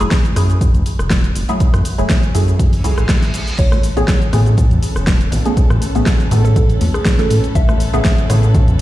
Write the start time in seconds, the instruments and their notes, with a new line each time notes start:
0.00 analog synth bass F#1, synth stab F#3 A3 E4 G#4, closed hi-hat, cabasa
0.11 kick, snare, closed hi-hat, cabasa
0.25 closed hi-hat, cabasa
0.36 analog synth bass F#2, synth stab F#3 A3 E4 G#4, cross-stick, open hi-hat, cabasa
0.50 closed hi-hat, cabasa
0.61 kick, closed hi-hat, cabasa
0.74 analog synth bass C#2, closed hi-hat, cabasa
0.86 open hi-hat, cabasa
0.99 analog synth bass E1, cross-stick, cabasa
1.10 kick, snare, closed hi-hat, cabasa
1.24 closed hi-hat, cabasa
1.35 analog synth bass F#1, open hi-hat, cabasa
1.49 synth stab F#3 A3 E4 G#4, closed hi-hat, cabasa
1.60 kick, closed hi-hat, cabasa
1.74 analog synth bass F#2, cross-stick, closed hi-hat, cabasa
1.85 open hi-hat, cabasa
1.98 analog synth bass F#1, synth stab F#3 A3 E4 G#4, closed hi-hat, cabasa
2.10 kick, snare, closed hi-hat, cabasa
2.23 closed hi-hat, cabasa
2.34 analog synth bass F#2, synth stab F#3 A3 E4 G#4, open hi-hat, cabasa
2.48 closed hi-hat, cabasa
2.59 kick, closed hi-hat, reverse cymbal, cabasa
2.73 open hi-hat, cabasa
2.84 analog synth bass C#2, synth stab F#3 A3 E4 G#4, open hi-hat, cabasa
2.98 analog synth bass A1, cross-stick, closed hi-hat, cabasa
3.09 kick, snare, closed hi-hat, cabasa
3.22 snare, closed hi-hat, cabasa
3.34 open hi-hat, cabasa
3.47 closed hi-hat, cabasa
3.59 analog synth bass A1, string machine C#4 B4, violin section A4, synth pluck C#5, kick, closed hi-hat, crash, cabasa
3.72 cross-stick, high conga, cabasa
3.83 open hi-hat, cabasa
3.97 analog synth bass A1, synth stab C#3 A3 B3 G#4, synth pluck C#5, closed hi-hat, cabasa
4.08 kick, snare, closed hi-hat, cabasa
4.22 closed hi-hat, cabasa
4.33 analog synth bass A2, synth stab C#3 A3 B3 G#4, cross-stick, open hi-hat, low conga, cabasa
4.46 closed hi-hat, cabasa
4.57 kick, closed hi-hat, low conga, cabasa
4.71 analog synth bass E2, closed hi-hat, cabasa
4.83 open hi-hat, cabasa
4.96 analog synth bass E1, cross-stick, cabasa
5.07 kick, snare, closed hi-hat, cabasa
5.21 closed hi-hat, cabasa
5.32 analog synth bass A1, open hi-hat, low conga, cabasa
5.45 synth stab C#3 A3 B3 G#4, closed hi-hat, high conga, cabasa
5.57 kick, closed hi-hat, cabasa
5.70 analog synth bass A2, cross-stick, high conga, cabasa
5.82 open hi-hat, cabasa
5.95 analog synth bass A1, synth stab C#3 A3 B3 G#4, closed hi-hat, cabasa
6.06 kick, snare, closed hi-hat, cabasa
6.20 closed hi-hat, cabasa
6.31 analog synth bass A2, synth stab C#3 A3 B3 A4, open hi-hat, low conga, cabasa
6.45 synth pluck A4, closed hi-hat, cabasa
6.56 kick, closed hi-hat, cabasa
6.70 closed hi-hat, cabasa
6.81 analog synth bass E2, open hi-hat, high conga, cabasa
6.94 synth pluck G#4, cross-stick, cabasa
7.05 kick, snare, closed hi-hat, cabasa
7.19 synth pluck A4, snare, closed hi-hat, high conga, cabasa
7.31 analog synth bass A2, open hi-hat, cabasa
7.44 closed hi-hat, cabasa
7.55 analog synth bass A1, synth pluck E5, kick, closed hi-hat, cabasa
7.69 cross-stick, high conga, cabasa
7.80 open hi-hat, cabasa
7.93 analog synth bass A1, synth stab C#3 A3 B3 G#4, synth pluck E5, closed hi-hat, cabasa
8.05 kick, snare, closed hi-hat, cabasa
8.18 closed hi-hat, cabasa
8.29 analog synth bass A2, synth stab C#3 A3 B3 G#4, cross-stick, open hi-hat, low conga, cabasa
8.43 closed hi-hat, cabasa
8.55 kick, closed hi-hat, low conga, cabasa
8.68 analog synth bass E2, closed hi-hat, cabasa